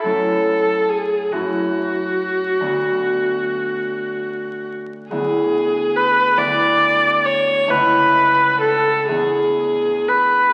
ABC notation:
X:1
M:12/8
L:1/8
Q:3/8=47
K:Emix
V:1 name="Viola"
A2 G F8 z | G2 B d2 c B2 A G2 B |]
V:2 name="Harp"
[F,,A,CE]3 [F,,A,CE]3 [D,,B,D]6 | [D,,B,E]3 [D,,B,E]3 [C,,A,CE]3 [E,,B,DE]3 |]